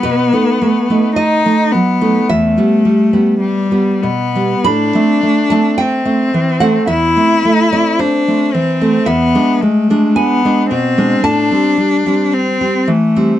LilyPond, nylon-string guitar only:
\new Staff \with { instrumentName = "Nylon-string guitar" } { \time 4/4 \key e \minor \tempo 4 = 54 << { b'4 dis''4 e''2 | b''8. a''16 g''8. fis''16 e''8. d''16 c''4 | e''4 gis''4 a''2 | } \\ { b,16 <a dis'>16 a16 <a dis'>8 <a dis'>16 fis16 <a dis'>16 e,16 <g b>16 g16 <g b>8 <g b>16 b,16 <g b>16 | a,16 <a c'>16 a16 <a c'>8 <a c'>16 e16 <a c'>16 e,16 <a c'>16 a16 <a c'>8 <a c'>16 e16 <a c'>16 | e,16 <gis d'>16 gis16 <gis d'>8 <gis d'>16 b,16 <gis d'>16 a,16 <g c'>16 g16 <g c'>8 <g c'>16 e16 <g c'>16 | } >> }